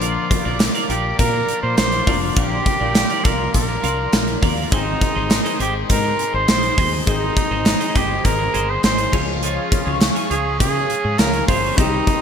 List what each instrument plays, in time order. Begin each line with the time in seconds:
Already playing: fretless electric bass A#1, overdriven electric guitar A#2 F3 A#3, grand piano D3 F3 A#3 D4 F4, analog synth pad A#4 D5 F5 D6
0.01 clean electric guitar F4 A#4 D5, flugelhorn F4, closed hi-hat
0.31 muted clean electric guitar stroke, kick, closed hi-hat
0.45 fretless electric bass A#1, clean electric guitar F4 A#4 D5
0.59 overdriven electric guitar A#2 F3 A#3, muted clean electric guitar stroke, snare, clap, closed hi-hat, tambourine
0.75 clean electric guitar F4 A#4 D5, closed hi-hat
0.89 fretless electric bass A#1, clean electric guitar F4 A#4 D5, flugelhorn G4, closed hi-hat
1.04 muted clean electric guitar stroke
1.16 overdriven electric guitar A#2 F3, fretless electric bass A#2, flugelhorn A#4, muted clean electric guitar stroke, kick, closed hi-hat
1.23 overdriven electric guitar A#3
1.34 muted clean electric guitar stroke
1.49 closed hi-hat
1.63 fretless electric bass A#2, flugelhorn C5, muted clean electric guitar stroke
1.77 fretless electric bass A#1, flugelhorn C5, muted clean electric guitar stroke, snare, clap, closed hi-hat, tambourine
1.92 muted clean electric guitar stroke, closed hi-hat
2.06 fretless electric bass F1, grand piano D3 F3 A#3 D4 F4, clean electric guitar F4 A#4 D5, analog synth pad C6, kick, open hi-hat
2.22 clean electric guitar F4 A#4 D5
2.36 fretless electric bass A#1, overdriven electric guitar A#2 F3 A#3, clean electric guitar F4 A#4 D5, flugelhorn G4, kick, closed hi-hat
2.66 muted clean electric guitar stroke, kick, closed hi-hat
2.81 fretless electric bass A#1, clean electric guitar F4 A#4 D5
2.94 overdriven electric guitar A#2 F3 A#3, snare, clap, closed hi-hat, tambourine
3.10 clean electric guitar F4 A#4 D5, closed hi-hat
3.24 fretless electric bass C2, clean electric guitar F4 A#4 D5, flugelhorn A#4, kick, closed hi-hat
3.40 muted clean electric guitar stroke
3.52 fretless electric bass A#1, overdriven electric guitar A#2 F3, flugelhorn A#4, muted clean electric guitar stroke, kick, closed hi-hat
3.59 overdriven electric guitar A#3
3.69 muted clean electric guitar stroke
3.84 fretless electric bass C2, clean electric guitar F4 A#4 D5, closed hi-hat
3.98 muted clean electric guitar stroke
4.13 fretless electric bass A#1, muted clean electric guitar stroke, snare, clap, closed hi-hat, tambourine
4.28 muted clean electric guitar stroke, closed hi-hat
4.42 fretless electric bass D#2, clean electric guitar F4 A#4 D5, kick, open hi-hat
4.57 clean electric guitar F4 A#4 D5
4.71 fretless electric bass G#1, overdriven electric guitar G#2 D#3 G#3, grand piano D#3 G#3 C4 D#4 G#4, flugelhorn D#4, clean electric guitar G#4 C5 D#5, analog synth pad G#4 C5 D#5 C6, kick, closed hi-hat
5.01 muted clean electric guitar stroke, kick, closed hi-hat
5.16 fretless electric bass G#1, clean electric guitar G#4 C5 D#5
5.30 overdriven electric guitar G#2 D#3, muted clean electric guitar stroke, snare, clap, closed hi-hat, tambourine
5.45 clean electric guitar G#4 C5 D#5, closed hi-hat
5.60 fretless electric bass G#1, flugelhorn G4, clean electric guitar G#4 C5 D#5, closed hi-hat
5.75 muted clean electric guitar stroke
5.87 overdriven electric guitar G#2 D#3, fretless electric bass G#2, flugelhorn A#4, muted clean electric guitar stroke, kick, closed hi-hat
5.94 overdriven electric guitar G#3
6.04 muted clean electric guitar stroke
6.19 closed hi-hat
6.34 fretless electric bass G#1, flugelhorn C5, muted clean electric guitar stroke
6.48 fretless electric bass A#1, flugelhorn C5, muted clean electric guitar stroke, snare, clap, closed hi-hat, tambourine
6.63 muted clean electric guitar stroke, closed hi-hat
6.78 fretless electric bass D#2, clean electric guitar G#4 C5 D#5, kick, open hi-hat
6.92 clean electric guitar G#4 C5 D#5
7.06 fretless electric bass G#1, overdriven electric guitar G#2 D#3 G#3, grand piano D#3 G#3 C4 D#4 G#4, flugelhorn D#4, clean electric guitar G#4 C5 D#5, kick, closed hi-hat
7.37 muted clean electric guitar stroke, kick, closed hi-hat
7.51 fretless electric bass G#1, clean electric guitar G#4 C5 D#5
7.65 overdriven electric guitar G#2 D#3 G#3, muted clean electric guitar stroke, snare, clap, closed hi-hat, tambourine
7.81 clean electric guitar G#4 C5 D#5, closed hi-hat
7.95 fretless electric bass G1, flugelhorn G4, clean electric guitar G#4 C5 D#5, kick, closed hi-hat
8.10 muted clean electric guitar stroke
8.24 fretless electric bass G#1, overdriven electric guitar G#2 D#3 G#3, flugelhorn A#4, muted clean electric guitar stroke, kick, closed hi-hat
8.39 muted clean electric guitar stroke
8.54 fretless electric bass G1, clean electric guitar G#4 C5 D#5, closed hi-hat
8.68 flugelhorn C5, muted clean electric guitar stroke
8.83 fretless electric bass G#1, flugelhorn C5, muted clean electric guitar stroke, snare, clap, closed hi-hat, tambourine
8.98 muted clean electric guitar stroke, closed hi-hat
9.12 fretless electric bass C#2, overdriven electric guitar C#3 G#3 C#4, grand piano F3 G#3 C#4 F4 G#4, clean electric guitar F4 G#4 C#5, analog synth pad C#5 F5 C#6, kick, crash
9.27 clean electric guitar F4 G#4 C#5
9.42 clean electric guitar F4 G#4 C#5, flugelhorn F4, closed hi-hat
9.72 muted clean electric guitar stroke, kick, closed hi-hat
9.86 fretless electric bass C#2, clean electric guitar F4 G#4 C#5
10.00 overdriven electric guitar C#3 G#3 C#4, muted clean electric guitar stroke, snare, clap, closed hi-hat, tambourine
10.16 clean electric guitar F4 G#4 C#5, closed hi-hat
10.30 fretless electric bass C#2, clean electric guitar F4 G#4 C#5, flugelhorn G#4, closed hi-hat
10.45 muted clean electric guitar stroke
10.58 overdriven electric guitar C#3 G#3, fretless electric bass C#3, flugelhorn G#4, muted clean electric guitar stroke, kick, closed hi-hat
10.65 overdriven electric guitar C#4
10.75 muted clean electric guitar stroke
10.90 closed hi-hat
11.04 fretless electric bass G#2, muted clean electric guitar stroke
11.19 fretless electric bass C#2, grand piano F3 G#3 C#4 F4 G#4, flugelhorn A#4, muted clean electric guitar stroke, snare, clap, closed hi-hat, tambourine
11.33 muted clean electric guitar stroke, closed hi-hat
11.48 fretless electric bass G1, clean electric guitar F4 G#4 C#5, flugelhorn C5, kick, open hi-hat
11.63 clean electric guitar F4 G#4 C#5
11.77 fretless electric bass C2, overdriven electric guitar C3 G3 C4, grand piano D#3 G3 C4 D#4 G4, clean electric guitar D#4 G4 C5, flugelhorn D#4, analog synth pad G4 C5 D#5 C6, kick, closed hi-hat
12.07 muted clean electric guitar stroke, kick, closed hi-hat